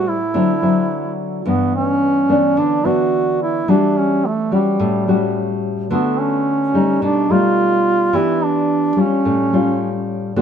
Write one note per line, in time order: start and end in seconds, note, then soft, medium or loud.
0.00 0.31 A2 medium
0.00 0.15 G3 soft
0.00 0.16 C4 medium
0.00 0.16 E4 soft
0.08 1.18 E4 medium
0.34 1.42 D3 medium
0.34 0.50 F#3 soft
0.34 0.50 C4 soft
0.34 0.51 E4 medium
0.62 1.41 F#3 medium
0.62 1.41 C4 soft
0.62 1.41 E4 medium
1.46 2.54 G2 medium
1.46 2.24 E3 soft
1.46 2.24 B3 medium
1.46 1.72 B3 medium
1.75 2.59 C#4 loud
2.29 2.80 E3 soft
2.29 2.80 B3 medium
2.29 2.80 D4 medium
2.57 3.65 D3 medium
2.57 2.88 D4 medium
2.85 3.63 E3 medium
2.85 3.64 B3 medium
2.85 3.64 D4 medium
2.85 3.41 F#4 medium
3.43 3.71 E4 medium
3.68 4.76 E3 medium
3.68 4.23 G3 soft
3.68 4.23 D4 soft
3.68 4.00 D4 medium
3.68 4.23 F#4 medium
3.98 4.27 C#4 medium
4.26 4.52 A3 medium
4.51 5.02 G3 medium
4.51 5.60 G3 medium
4.51 5.03 C#4 medium
4.51 5.03 F#4 medium
4.80 5.88 A2 medium
5.08 5.86 G3 medium
5.08 5.87 C#4 medium
5.08 5.87 F#4 medium
5.91 6.99 D3 medium
5.91 6.70 A3 soft
5.91 6.70 B3 soft
5.91 6.21 B3 medium
5.91 6.70 F#4 medium
6.20 7.02 C#4 medium
6.74 7.25 G3 medium
6.74 7.25 A3 soft
6.74 7.26 D#4 medium
7.02 8.10 B2 medium
7.02 7.33 D4 medium
7.30 8.09 G3 medium
7.30 8.09 A3 medium
7.30 8.09 D#4 medium
7.30 8.17 F4 medium
8.13 8.96 E3 medium
8.13 8.92 B3 medium
8.13 8.92 D4 soft
8.13 8.46 E4 medium
8.13 8.93 G4 medium
8.44 9.02 D4 medium
8.96 9.48 G3 soft
8.96 9.48 C#4 soft
8.96 9.48 F4 medium
9.01 10.10 C#4 medium
9.25 10.34 A2 medium
9.53 10.32 G3 medium
9.53 10.32 C#4 medium
9.53 10.32 F4 medium
10.36 10.42 D3 medium
10.36 10.42 A3 soft
10.36 10.42 B3 medium
10.36 10.42 F#4 medium